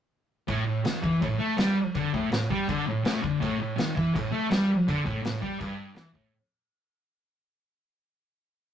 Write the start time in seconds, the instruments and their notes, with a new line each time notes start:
0.48 distorted electric guitar A2, kick, crash
0.66 distorted electric guitar A2
0.85 distorted electric guitar D#3, snare, crash
1.02 distorted electric guitar E3, kick
1.21 distorted electric guitar A2, kick, crash
1.38 distorted electric guitar A3
1.58 distorted electric guitar G3, snare, crash
1.95 distorted electric guitar D3, kick, crash
2.14 distorted electric guitar A2, kick
2.31 distorted electric guitar A2, snare, crash
2.50 distorted electric guitar G3, kick
2.68 distorted electric guitar D3, kick, crash
2.88 distorted electric guitar A2
3.05 distorted electric guitar A2, snare, crash
3.23 distorted electric guitar D3, kick
3.41 distorted electric guitar A2, kick, crash
3.61 distorted electric guitar A2
3.78 distorted electric guitar D#3, snare, crash
3.96 distorted electric guitar E3, kick
4.15 distorted electric guitar A2, kick, crash
4.32 distorted electric guitar A3
4.51 distorted electric guitar G3, snare, crash
4.88 distorted electric guitar D3, kick, crash
5.05 distorted electric guitar A2, kick
5.23 distorted electric guitar A2, snare, crash
5.41 distorted electric guitar G3, kick
5.59 distorted electric guitar G2, kick, crash
5.94 distorted electric guitar E3, snare, crash
6.13 distorted electric guitar A2, kick